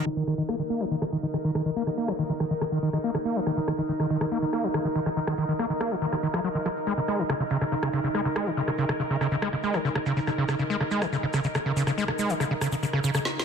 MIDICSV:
0, 0, Header, 1, 4, 480
1, 0, Start_track
1, 0, Tempo, 425532
1, 69, Time_signature, 4, 2, 24, 8
1, 15170, End_track
2, 0, Start_track
2, 0, Title_t, "Ambient pad"
2, 0, Program_c, 0, 92
2, 69, Note_on_c, 0, 63, 71
2, 69, Note_on_c, 0, 70, 69
2, 14949, Note_off_c, 0, 63, 0
2, 14949, Note_off_c, 0, 70, 0
2, 15170, End_track
3, 0, Start_track
3, 0, Title_t, "Acid bass"
3, 0, Program_c, 1, 38
3, 69, Note_on_c, 1, 51, 84
3, 97, Note_off_c, 1, 51, 0
3, 189, Note_on_c, 1, 51, 74
3, 260, Note_off_c, 1, 51, 0
3, 309, Note_on_c, 1, 51, 100
3, 380, Note_off_c, 1, 51, 0
3, 429, Note_on_c, 1, 51, 95
3, 476, Note_off_c, 1, 51, 0
3, 549, Note_on_c, 1, 58, 103
3, 620, Note_off_c, 1, 58, 0
3, 669, Note_on_c, 1, 51, 78
3, 697, Note_off_c, 1, 51, 0
3, 789, Note_on_c, 1, 58, 77
3, 909, Note_on_c, 1, 53, 78
3, 926, Note_off_c, 1, 58, 0
3, 956, Note_off_c, 1, 53, 0
3, 1029, Note_on_c, 1, 51, 84
3, 1076, Note_off_c, 1, 51, 0
3, 1149, Note_on_c, 1, 51, 75
3, 1177, Note_off_c, 1, 51, 0
3, 1269, Note_on_c, 1, 51, 76
3, 1316, Note_off_c, 1, 51, 0
3, 1389, Note_on_c, 1, 51, 102
3, 1417, Note_off_c, 1, 51, 0
3, 1509, Note_on_c, 1, 51, 79
3, 1537, Note_off_c, 1, 51, 0
3, 1629, Note_on_c, 1, 51, 76
3, 1700, Note_off_c, 1, 51, 0
3, 1749, Note_on_c, 1, 51, 101
3, 1820, Note_off_c, 1, 51, 0
3, 1869, Note_on_c, 1, 51, 103
3, 1916, Note_off_c, 1, 51, 0
3, 1989, Note_on_c, 1, 58, 96
3, 2060, Note_off_c, 1, 58, 0
3, 2109, Note_on_c, 1, 51, 70
3, 2137, Note_off_c, 1, 51, 0
3, 2229, Note_on_c, 1, 58, 74
3, 2349, Note_on_c, 1, 53, 72
3, 2366, Note_off_c, 1, 58, 0
3, 2396, Note_off_c, 1, 53, 0
3, 2469, Note_on_c, 1, 51, 81
3, 2516, Note_off_c, 1, 51, 0
3, 2589, Note_on_c, 1, 51, 79
3, 2617, Note_off_c, 1, 51, 0
3, 2709, Note_on_c, 1, 51, 75
3, 2756, Note_off_c, 1, 51, 0
3, 2829, Note_on_c, 1, 51, 100
3, 2857, Note_off_c, 1, 51, 0
3, 2949, Note_on_c, 1, 51, 80
3, 2977, Note_off_c, 1, 51, 0
3, 3069, Note_on_c, 1, 51, 69
3, 3140, Note_off_c, 1, 51, 0
3, 3189, Note_on_c, 1, 51, 104
3, 3260, Note_off_c, 1, 51, 0
3, 3309, Note_on_c, 1, 51, 100
3, 3356, Note_off_c, 1, 51, 0
3, 3429, Note_on_c, 1, 58, 94
3, 3500, Note_off_c, 1, 58, 0
3, 3549, Note_on_c, 1, 51, 80
3, 3577, Note_off_c, 1, 51, 0
3, 3669, Note_on_c, 1, 58, 75
3, 3789, Note_on_c, 1, 53, 79
3, 3806, Note_off_c, 1, 58, 0
3, 3836, Note_off_c, 1, 53, 0
3, 3909, Note_on_c, 1, 51, 82
3, 3956, Note_off_c, 1, 51, 0
3, 4029, Note_on_c, 1, 51, 75
3, 4057, Note_off_c, 1, 51, 0
3, 4148, Note_on_c, 1, 51, 74
3, 4196, Note_off_c, 1, 51, 0
3, 4269, Note_on_c, 1, 51, 105
3, 4297, Note_off_c, 1, 51, 0
3, 4389, Note_on_c, 1, 51, 81
3, 4417, Note_off_c, 1, 51, 0
3, 4509, Note_on_c, 1, 51, 80
3, 4580, Note_off_c, 1, 51, 0
3, 4629, Note_on_c, 1, 51, 102
3, 4700, Note_off_c, 1, 51, 0
3, 4749, Note_on_c, 1, 51, 97
3, 4796, Note_off_c, 1, 51, 0
3, 4869, Note_on_c, 1, 58, 100
3, 4940, Note_off_c, 1, 58, 0
3, 4989, Note_on_c, 1, 51, 75
3, 5017, Note_off_c, 1, 51, 0
3, 5109, Note_on_c, 1, 58, 74
3, 5229, Note_on_c, 1, 53, 73
3, 5246, Note_off_c, 1, 58, 0
3, 5276, Note_off_c, 1, 53, 0
3, 5349, Note_on_c, 1, 51, 76
3, 5396, Note_off_c, 1, 51, 0
3, 5469, Note_on_c, 1, 51, 74
3, 5497, Note_off_c, 1, 51, 0
3, 5589, Note_on_c, 1, 51, 74
3, 5636, Note_off_c, 1, 51, 0
3, 5709, Note_on_c, 1, 51, 106
3, 5737, Note_off_c, 1, 51, 0
3, 5829, Note_on_c, 1, 51, 86
3, 5857, Note_off_c, 1, 51, 0
3, 5949, Note_on_c, 1, 51, 75
3, 6020, Note_off_c, 1, 51, 0
3, 6069, Note_on_c, 1, 51, 95
3, 6140, Note_off_c, 1, 51, 0
3, 6189, Note_on_c, 1, 51, 98
3, 6236, Note_off_c, 1, 51, 0
3, 6309, Note_on_c, 1, 58, 99
3, 6380, Note_off_c, 1, 58, 0
3, 6429, Note_on_c, 1, 51, 82
3, 6457, Note_off_c, 1, 51, 0
3, 6549, Note_on_c, 1, 58, 78
3, 6669, Note_on_c, 1, 53, 77
3, 6685, Note_off_c, 1, 58, 0
3, 6716, Note_off_c, 1, 53, 0
3, 6789, Note_on_c, 1, 51, 87
3, 6836, Note_off_c, 1, 51, 0
3, 6909, Note_on_c, 1, 51, 76
3, 6937, Note_off_c, 1, 51, 0
3, 7029, Note_on_c, 1, 51, 105
3, 7076, Note_off_c, 1, 51, 0
3, 7149, Note_on_c, 1, 53, 74
3, 7220, Note_off_c, 1, 53, 0
3, 7268, Note_on_c, 1, 54, 78
3, 7316, Note_off_c, 1, 54, 0
3, 7388, Note_on_c, 1, 51, 76
3, 7417, Note_off_c, 1, 51, 0
3, 7508, Note_on_c, 1, 53, 70
3, 7537, Note_off_c, 1, 53, 0
3, 7748, Note_on_c, 1, 56, 100
3, 7820, Note_off_c, 1, 56, 0
3, 7869, Note_on_c, 1, 49, 78
3, 7897, Note_off_c, 1, 49, 0
3, 7989, Note_on_c, 1, 56, 72
3, 8109, Note_on_c, 1, 51, 77
3, 8126, Note_off_c, 1, 56, 0
3, 8156, Note_off_c, 1, 51, 0
3, 8229, Note_on_c, 1, 49, 86
3, 8276, Note_off_c, 1, 49, 0
3, 8349, Note_on_c, 1, 49, 80
3, 8377, Note_off_c, 1, 49, 0
3, 8469, Note_on_c, 1, 49, 104
3, 8540, Note_off_c, 1, 49, 0
3, 8588, Note_on_c, 1, 49, 95
3, 8617, Note_off_c, 1, 49, 0
3, 8709, Note_on_c, 1, 49, 87
3, 8737, Note_off_c, 1, 49, 0
3, 8829, Note_on_c, 1, 49, 73
3, 8900, Note_off_c, 1, 49, 0
3, 8949, Note_on_c, 1, 49, 102
3, 9020, Note_off_c, 1, 49, 0
3, 9069, Note_on_c, 1, 49, 104
3, 9116, Note_off_c, 1, 49, 0
3, 9189, Note_on_c, 1, 56, 97
3, 9260, Note_off_c, 1, 56, 0
3, 9309, Note_on_c, 1, 49, 78
3, 9337, Note_off_c, 1, 49, 0
3, 9429, Note_on_c, 1, 56, 75
3, 9549, Note_on_c, 1, 51, 82
3, 9566, Note_off_c, 1, 56, 0
3, 9596, Note_off_c, 1, 51, 0
3, 9668, Note_on_c, 1, 49, 82
3, 9716, Note_off_c, 1, 49, 0
3, 9788, Note_on_c, 1, 49, 71
3, 9817, Note_off_c, 1, 49, 0
3, 9908, Note_on_c, 1, 49, 96
3, 9980, Note_off_c, 1, 49, 0
3, 10028, Note_on_c, 1, 49, 99
3, 10057, Note_off_c, 1, 49, 0
3, 10149, Note_on_c, 1, 49, 84
3, 10177, Note_off_c, 1, 49, 0
3, 10269, Note_on_c, 1, 49, 78
3, 10340, Note_off_c, 1, 49, 0
3, 10389, Note_on_c, 1, 49, 103
3, 10459, Note_off_c, 1, 49, 0
3, 10508, Note_on_c, 1, 49, 102
3, 10556, Note_off_c, 1, 49, 0
3, 10628, Note_on_c, 1, 56, 101
3, 10699, Note_off_c, 1, 56, 0
3, 10748, Note_on_c, 1, 49, 72
3, 10777, Note_off_c, 1, 49, 0
3, 10868, Note_on_c, 1, 56, 79
3, 10988, Note_on_c, 1, 51, 78
3, 11005, Note_off_c, 1, 56, 0
3, 11036, Note_off_c, 1, 51, 0
3, 11108, Note_on_c, 1, 49, 77
3, 11156, Note_off_c, 1, 49, 0
3, 11229, Note_on_c, 1, 49, 76
3, 11257, Note_off_c, 1, 49, 0
3, 11349, Note_on_c, 1, 49, 97
3, 11420, Note_off_c, 1, 49, 0
3, 11469, Note_on_c, 1, 49, 106
3, 11497, Note_off_c, 1, 49, 0
3, 11588, Note_on_c, 1, 49, 83
3, 11617, Note_off_c, 1, 49, 0
3, 11708, Note_on_c, 1, 49, 73
3, 11779, Note_off_c, 1, 49, 0
3, 11828, Note_on_c, 1, 49, 100
3, 11899, Note_off_c, 1, 49, 0
3, 11949, Note_on_c, 1, 49, 101
3, 11996, Note_off_c, 1, 49, 0
3, 12069, Note_on_c, 1, 56, 104
3, 12140, Note_off_c, 1, 56, 0
3, 12189, Note_on_c, 1, 49, 75
3, 12217, Note_off_c, 1, 49, 0
3, 12309, Note_on_c, 1, 56, 78
3, 12429, Note_on_c, 1, 51, 78
3, 12446, Note_off_c, 1, 56, 0
3, 12476, Note_off_c, 1, 51, 0
3, 12549, Note_on_c, 1, 49, 83
3, 12596, Note_off_c, 1, 49, 0
3, 12669, Note_on_c, 1, 49, 74
3, 12697, Note_off_c, 1, 49, 0
3, 12789, Note_on_c, 1, 49, 105
3, 12860, Note_off_c, 1, 49, 0
3, 12909, Note_on_c, 1, 49, 102
3, 12937, Note_off_c, 1, 49, 0
3, 13029, Note_on_c, 1, 49, 78
3, 13057, Note_off_c, 1, 49, 0
3, 13149, Note_on_c, 1, 49, 77
3, 13220, Note_off_c, 1, 49, 0
3, 13269, Note_on_c, 1, 49, 100
3, 13340, Note_off_c, 1, 49, 0
3, 13389, Note_on_c, 1, 49, 109
3, 13436, Note_off_c, 1, 49, 0
3, 13509, Note_on_c, 1, 56, 101
3, 13580, Note_off_c, 1, 56, 0
3, 13629, Note_on_c, 1, 49, 70
3, 13657, Note_off_c, 1, 49, 0
3, 13749, Note_on_c, 1, 56, 75
3, 13869, Note_on_c, 1, 51, 75
3, 13886, Note_off_c, 1, 56, 0
3, 13916, Note_off_c, 1, 51, 0
3, 13989, Note_on_c, 1, 49, 82
3, 14036, Note_off_c, 1, 49, 0
3, 14109, Note_on_c, 1, 49, 79
3, 14137, Note_off_c, 1, 49, 0
3, 14229, Note_on_c, 1, 49, 106
3, 14300, Note_off_c, 1, 49, 0
3, 14349, Note_on_c, 1, 49, 96
3, 14377, Note_off_c, 1, 49, 0
3, 14469, Note_on_c, 1, 49, 88
3, 14497, Note_off_c, 1, 49, 0
3, 14589, Note_on_c, 1, 49, 71
3, 14660, Note_off_c, 1, 49, 0
3, 14709, Note_on_c, 1, 49, 103
3, 14780, Note_off_c, 1, 49, 0
3, 14829, Note_on_c, 1, 49, 101
3, 14876, Note_off_c, 1, 49, 0
3, 15170, End_track
4, 0, Start_track
4, 0, Title_t, "Drums"
4, 309, Note_on_c, 9, 37, 36
4, 310, Note_on_c, 9, 82, 96
4, 422, Note_off_c, 9, 37, 0
4, 423, Note_off_c, 9, 82, 0
4, 429, Note_on_c, 9, 82, 49
4, 542, Note_off_c, 9, 82, 0
4, 549, Note_on_c, 9, 37, 72
4, 551, Note_on_c, 9, 82, 37
4, 662, Note_off_c, 9, 37, 0
4, 664, Note_off_c, 9, 82, 0
4, 791, Note_on_c, 9, 82, 97
4, 904, Note_off_c, 9, 82, 0
4, 909, Note_on_c, 9, 37, 37
4, 916, Note_on_c, 9, 82, 54
4, 1022, Note_off_c, 9, 37, 0
4, 1029, Note_off_c, 9, 82, 0
4, 1029, Note_on_c, 9, 82, 34
4, 1142, Note_off_c, 9, 82, 0
4, 1149, Note_on_c, 9, 37, 71
4, 1262, Note_off_c, 9, 37, 0
4, 1284, Note_on_c, 9, 82, 92
4, 1380, Note_off_c, 9, 82, 0
4, 1380, Note_on_c, 9, 82, 50
4, 1493, Note_off_c, 9, 82, 0
4, 1509, Note_on_c, 9, 37, 36
4, 1517, Note_on_c, 9, 82, 40
4, 1622, Note_off_c, 9, 37, 0
4, 1630, Note_off_c, 9, 82, 0
4, 1749, Note_on_c, 9, 37, 74
4, 1757, Note_on_c, 9, 82, 84
4, 1862, Note_off_c, 9, 37, 0
4, 1870, Note_off_c, 9, 82, 0
4, 1872, Note_on_c, 9, 82, 48
4, 1985, Note_off_c, 9, 82, 0
4, 1988, Note_on_c, 9, 82, 43
4, 2101, Note_off_c, 9, 82, 0
4, 2109, Note_on_c, 9, 37, 36
4, 2222, Note_off_c, 9, 37, 0
4, 2224, Note_on_c, 9, 82, 101
4, 2337, Note_off_c, 9, 82, 0
4, 2348, Note_on_c, 9, 82, 54
4, 2349, Note_on_c, 9, 37, 74
4, 2461, Note_off_c, 9, 82, 0
4, 2462, Note_off_c, 9, 37, 0
4, 2463, Note_on_c, 9, 82, 43
4, 2576, Note_off_c, 9, 82, 0
4, 2702, Note_on_c, 9, 82, 96
4, 2709, Note_on_c, 9, 37, 37
4, 2814, Note_off_c, 9, 82, 0
4, 2822, Note_off_c, 9, 37, 0
4, 2830, Note_on_c, 9, 82, 53
4, 2943, Note_off_c, 9, 82, 0
4, 2948, Note_on_c, 9, 82, 38
4, 2949, Note_on_c, 9, 37, 70
4, 3061, Note_off_c, 9, 82, 0
4, 3062, Note_off_c, 9, 37, 0
4, 3192, Note_on_c, 9, 82, 97
4, 3305, Note_off_c, 9, 82, 0
4, 3309, Note_on_c, 9, 37, 36
4, 3312, Note_on_c, 9, 82, 50
4, 3422, Note_off_c, 9, 37, 0
4, 3423, Note_off_c, 9, 82, 0
4, 3423, Note_on_c, 9, 82, 43
4, 3536, Note_off_c, 9, 82, 0
4, 3549, Note_on_c, 9, 37, 72
4, 3662, Note_off_c, 9, 37, 0
4, 3668, Note_on_c, 9, 82, 86
4, 3780, Note_off_c, 9, 82, 0
4, 3791, Note_on_c, 9, 82, 51
4, 3904, Note_off_c, 9, 82, 0
4, 3909, Note_on_c, 9, 37, 41
4, 3913, Note_on_c, 9, 82, 43
4, 4022, Note_off_c, 9, 37, 0
4, 4026, Note_off_c, 9, 82, 0
4, 4147, Note_on_c, 9, 82, 100
4, 4149, Note_on_c, 9, 37, 74
4, 4260, Note_off_c, 9, 82, 0
4, 4262, Note_off_c, 9, 37, 0
4, 4270, Note_on_c, 9, 82, 52
4, 4383, Note_off_c, 9, 82, 0
4, 4386, Note_on_c, 9, 82, 38
4, 4499, Note_off_c, 9, 82, 0
4, 4509, Note_on_c, 9, 37, 37
4, 4622, Note_off_c, 9, 37, 0
4, 4632, Note_on_c, 9, 82, 88
4, 4744, Note_off_c, 9, 82, 0
4, 4749, Note_on_c, 9, 37, 77
4, 4752, Note_on_c, 9, 82, 57
4, 4862, Note_off_c, 9, 37, 0
4, 4865, Note_off_c, 9, 82, 0
4, 4867, Note_on_c, 9, 82, 35
4, 4980, Note_off_c, 9, 82, 0
4, 5105, Note_on_c, 9, 82, 96
4, 5109, Note_on_c, 9, 37, 40
4, 5218, Note_off_c, 9, 82, 0
4, 5222, Note_off_c, 9, 37, 0
4, 5222, Note_on_c, 9, 82, 53
4, 5335, Note_off_c, 9, 82, 0
4, 5343, Note_on_c, 9, 82, 34
4, 5349, Note_on_c, 9, 37, 77
4, 5456, Note_off_c, 9, 82, 0
4, 5462, Note_off_c, 9, 37, 0
4, 5587, Note_on_c, 9, 82, 92
4, 5700, Note_off_c, 9, 82, 0
4, 5709, Note_on_c, 9, 37, 38
4, 5709, Note_on_c, 9, 82, 49
4, 5822, Note_off_c, 9, 37, 0
4, 5822, Note_off_c, 9, 82, 0
4, 5837, Note_on_c, 9, 82, 40
4, 5949, Note_on_c, 9, 37, 81
4, 5950, Note_off_c, 9, 82, 0
4, 6056, Note_on_c, 9, 82, 87
4, 6062, Note_off_c, 9, 37, 0
4, 6168, Note_off_c, 9, 82, 0
4, 6187, Note_on_c, 9, 82, 50
4, 6300, Note_off_c, 9, 82, 0
4, 6309, Note_on_c, 9, 37, 39
4, 6310, Note_on_c, 9, 82, 42
4, 6422, Note_off_c, 9, 37, 0
4, 6423, Note_off_c, 9, 82, 0
4, 6547, Note_on_c, 9, 82, 94
4, 6549, Note_on_c, 9, 37, 78
4, 6660, Note_off_c, 9, 82, 0
4, 6662, Note_off_c, 9, 37, 0
4, 6668, Note_on_c, 9, 82, 53
4, 6780, Note_off_c, 9, 82, 0
4, 6796, Note_on_c, 9, 82, 40
4, 6909, Note_off_c, 9, 82, 0
4, 6909, Note_on_c, 9, 37, 38
4, 7022, Note_off_c, 9, 37, 0
4, 7032, Note_on_c, 9, 82, 93
4, 7145, Note_off_c, 9, 82, 0
4, 7149, Note_on_c, 9, 37, 77
4, 7150, Note_on_c, 9, 82, 54
4, 7262, Note_off_c, 9, 37, 0
4, 7262, Note_off_c, 9, 82, 0
4, 7277, Note_on_c, 9, 82, 36
4, 7389, Note_off_c, 9, 82, 0
4, 7507, Note_on_c, 9, 82, 88
4, 7509, Note_on_c, 9, 37, 39
4, 7620, Note_off_c, 9, 82, 0
4, 7622, Note_off_c, 9, 37, 0
4, 7632, Note_on_c, 9, 82, 52
4, 7745, Note_off_c, 9, 82, 0
4, 7752, Note_on_c, 9, 82, 42
4, 7865, Note_off_c, 9, 82, 0
4, 7980, Note_on_c, 9, 82, 96
4, 7989, Note_on_c, 9, 37, 42
4, 8093, Note_off_c, 9, 82, 0
4, 8102, Note_off_c, 9, 37, 0
4, 8106, Note_on_c, 9, 82, 47
4, 8219, Note_off_c, 9, 82, 0
4, 8229, Note_on_c, 9, 37, 77
4, 8237, Note_on_c, 9, 82, 39
4, 8342, Note_off_c, 9, 37, 0
4, 8349, Note_off_c, 9, 82, 0
4, 8462, Note_on_c, 9, 82, 98
4, 8574, Note_off_c, 9, 82, 0
4, 8580, Note_on_c, 9, 82, 45
4, 8589, Note_on_c, 9, 37, 41
4, 8692, Note_off_c, 9, 82, 0
4, 8702, Note_off_c, 9, 37, 0
4, 8707, Note_on_c, 9, 82, 41
4, 8819, Note_off_c, 9, 82, 0
4, 8829, Note_on_c, 9, 37, 83
4, 8941, Note_on_c, 9, 82, 85
4, 8942, Note_off_c, 9, 37, 0
4, 9054, Note_off_c, 9, 82, 0
4, 9062, Note_on_c, 9, 82, 46
4, 9175, Note_off_c, 9, 82, 0
4, 9184, Note_on_c, 9, 82, 40
4, 9189, Note_on_c, 9, 37, 41
4, 9297, Note_off_c, 9, 82, 0
4, 9302, Note_off_c, 9, 37, 0
4, 9426, Note_on_c, 9, 82, 93
4, 9429, Note_on_c, 9, 37, 81
4, 9539, Note_off_c, 9, 82, 0
4, 9541, Note_off_c, 9, 37, 0
4, 9544, Note_on_c, 9, 82, 53
4, 9657, Note_off_c, 9, 82, 0
4, 9672, Note_on_c, 9, 82, 40
4, 9784, Note_off_c, 9, 82, 0
4, 9788, Note_on_c, 9, 37, 41
4, 9901, Note_off_c, 9, 37, 0
4, 9905, Note_on_c, 9, 82, 95
4, 10017, Note_off_c, 9, 82, 0
4, 10027, Note_on_c, 9, 82, 54
4, 10028, Note_on_c, 9, 37, 80
4, 10140, Note_off_c, 9, 82, 0
4, 10141, Note_off_c, 9, 37, 0
4, 10153, Note_on_c, 9, 82, 38
4, 10266, Note_off_c, 9, 82, 0
4, 10389, Note_on_c, 9, 37, 39
4, 10396, Note_on_c, 9, 82, 92
4, 10501, Note_off_c, 9, 37, 0
4, 10506, Note_off_c, 9, 82, 0
4, 10506, Note_on_c, 9, 82, 47
4, 10619, Note_off_c, 9, 82, 0
4, 10625, Note_on_c, 9, 82, 34
4, 10628, Note_on_c, 9, 37, 81
4, 10738, Note_off_c, 9, 82, 0
4, 10741, Note_off_c, 9, 37, 0
4, 10867, Note_on_c, 9, 82, 83
4, 10980, Note_off_c, 9, 82, 0
4, 10982, Note_on_c, 9, 82, 46
4, 10989, Note_on_c, 9, 37, 41
4, 11094, Note_off_c, 9, 82, 0
4, 11101, Note_off_c, 9, 37, 0
4, 11114, Note_on_c, 9, 82, 34
4, 11227, Note_off_c, 9, 82, 0
4, 11229, Note_on_c, 9, 37, 78
4, 11341, Note_off_c, 9, 37, 0
4, 11349, Note_on_c, 9, 82, 92
4, 11462, Note_off_c, 9, 82, 0
4, 11470, Note_on_c, 9, 82, 53
4, 11583, Note_off_c, 9, 82, 0
4, 11586, Note_on_c, 9, 82, 39
4, 11589, Note_on_c, 9, 37, 41
4, 11699, Note_off_c, 9, 82, 0
4, 11702, Note_off_c, 9, 37, 0
4, 11829, Note_on_c, 9, 37, 75
4, 11829, Note_on_c, 9, 82, 87
4, 11941, Note_off_c, 9, 82, 0
4, 11942, Note_off_c, 9, 37, 0
4, 11944, Note_on_c, 9, 82, 48
4, 12057, Note_off_c, 9, 82, 0
4, 12076, Note_on_c, 9, 82, 40
4, 12188, Note_off_c, 9, 82, 0
4, 12189, Note_on_c, 9, 37, 40
4, 12302, Note_off_c, 9, 37, 0
4, 12306, Note_on_c, 9, 82, 78
4, 12419, Note_off_c, 9, 82, 0
4, 12429, Note_on_c, 9, 37, 78
4, 12429, Note_on_c, 9, 82, 49
4, 12542, Note_off_c, 9, 37, 0
4, 12542, Note_off_c, 9, 82, 0
4, 12552, Note_on_c, 9, 82, 35
4, 12665, Note_off_c, 9, 82, 0
4, 12784, Note_on_c, 9, 82, 82
4, 12789, Note_on_c, 9, 37, 41
4, 12897, Note_off_c, 9, 82, 0
4, 12902, Note_off_c, 9, 37, 0
4, 12902, Note_on_c, 9, 82, 44
4, 13015, Note_off_c, 9, 82, 0
4, 13027, Note_on_c, 9, 82, 37
4, 13029, Note_on_c, 9, 37, 79
4, 13140, Note_off_c, 9, 82, 0
4, 13142, Note_off_c, 9, 37, 0
4, 13275, Note_on_c, 9, 82, 87
4, 13388, Note_off_c, 9, 82, 0
4, 13389, Note_on_c, 9, 37, 40
4, 13391, Note_on_c, 9, 82, 55
4, 13502, Note_off_c, 9, 37, 0
4, 13504, Note_off_c, 9, 82, 0
4, 13516, Note_on_c, 9, 82, 37
4, 13629, Note_off_c, 9, 82, 0
4, 13629, Note_on_c, 9, 37, 77
4, 13742, Note_off_c, 9, 37, 0
4, 13747, Note_on_c, 9, 82, 81
4, 13860, Note_off_c, 9, 82, 0
4, 13871, Note_on_c, 9, 82, 50
4, 13984, Note_off_c, 9, 82, 0
4, 13989, Note_on_c, 9, 37, 38
4, 13994, Note_on_c, 9, 82, 42
4, 14102, Note_off_c, 9, 37, 0
4, 14107, Note_off_c, 9, 82, 0
4, 14229, Note_on_c, 9, 37, 72
4, 14233, Note_on_c, 9, 82, 80
4, 14342, Note_off_c, 9, 37, 0
4, 14345, Note_off_c, 9, 82, 0
4, 14348, Note_on_c, 9, 82, 49
4, 14461, Note_off_c, 9, 82, 0
4, 14473, Note_on_c, 9, 82, 41
4, 14586, Note_off_c, 9, 82, 0
4, 14589, Note_on_c, 9, 37, 39
4, 14702, Note_off_c, 9, 37, 0
4, 14707, Note_on_c, 9, 82, 84
4, 14820, Note_off_c, 9, 82, 0
4, 14825, Note_on_c, 9, 82, 52
4, 14829, Note_on_c, 9, 37, 76
4, 14938, Note_off_c, 9, 82, 0
4, 14942, Note_off_c, 9, 37, 0
4, 14949, Note_on_c, 9, 38, 64
4, 15062, Note_off_c, 9, 38, 0
4, 15109, Note_on_c, 9, 38, 78
4, 15170, Note_off_c, 9, 38, 0
4, 15170, End_track
0, 0, End_of_file